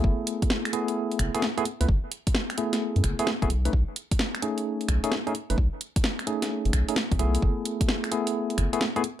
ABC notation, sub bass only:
X:1
M:4/4
L:1/16
Q:"Swing 16ths" 1/4=130
K:F#dor
V:1 name="Sub bass" clef=bass
F,,, z8 z F,,, z4 C,, | F,,, z8 F,, F,,, z2 E,,, B,,, z | B,,, z8 z B,,, z4 F,,, | B,,, z8 F,,, B,,, z2 A,,, B,,, z |
F,,, z8 z F,,, z4 z |]